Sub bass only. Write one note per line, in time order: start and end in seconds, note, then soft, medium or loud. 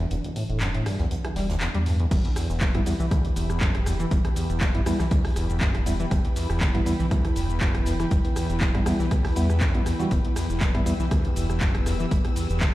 0.11 0.21 E1 medium
0.49 0.81 E1 loud
0.99 1.31 B1 medium
1.36 1.69 E1 loud
1.75 2.06 E2 medium
2.11 2.21 E1 loud
2.50 2.81 E1 loud
3.00 3.31 B1 medium
3.36 3.69 E1 loud
3.75 4.06 E1 medium
4.11 4.21 E1 loud
4.50 4.81 E1 loud
5.00 5.31 B1 medium
5.36 5.69 E1 medium
5.75 6.07 E1 medium
6.11 6.21 E1 loud
6.49 6.81 E1 loud
7.00 7.31 B1 medium
7.36 7.69 E1 loud
7.75 8.06 E1 medium
8.11 8.21 E1 loud
8.50 8.81 E1 loud
8.99 9.31 B1 medium
9.36 9.69 E2 loud
9.74 9.83 B1 medium
10.11 10.21 E1 loud
10.50 10.81 E1 loud
11.00 11.31 B1 medium
11.36 11.69 E1 medium
11.75 12.06 E1 medium
12.11 12.21 E1 loud
12.50 12.74 E1 loud